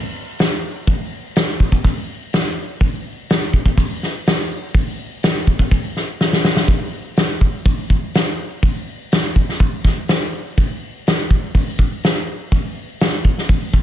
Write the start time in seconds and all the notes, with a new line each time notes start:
0.39 snare, open hi-hat
0.87 kick, open hi-hat
1.36 snare, open hi-hat
1.60 kick
1.72 kick
1.85 kick, open hi-hat
2.33 snare, open hi-hat
2.80 kick, open hi-hat
3.30 snare, open hi-hat
3.54 kick
3.66 kick
3.78 kick, open hi-hat
4.03 snare
4.27 snare, open hi-hat
4.75 kick, open hi-hat
5.23 snare, open hi-hat
5.47 kick
5.59 kick
5.71 kick, open hi-hat
5.97 snare
6.21 snare
6.33 snare
6.44 snare
6.57 snare
6.68 kick, open hi-hat
7.17 snare, open hi-hat
7.41 kick
7.66 kick, open hi-hat
7.90 kick
8.14 snare, open hi-hat
8.63 kick, open hi-hat
9.12 snare, open hi-hat
9.36 kick
9.49 snare
9.60 kick, open hi-hat
9.85 kick, snare
10.08 snare, open hi-hat
10.57 kick, open hi-hat
11.07 snare, open hi-hat
11.31 kick
11.55 kick, open hi-hat
11.79 kick
12.04 snare, open hi-hat
12.52 kick, open hi-hat
13.00 snare, open hi-hat
13.25 kick
13.38 snare
13.49 kick, open hi-hat
13.73 kick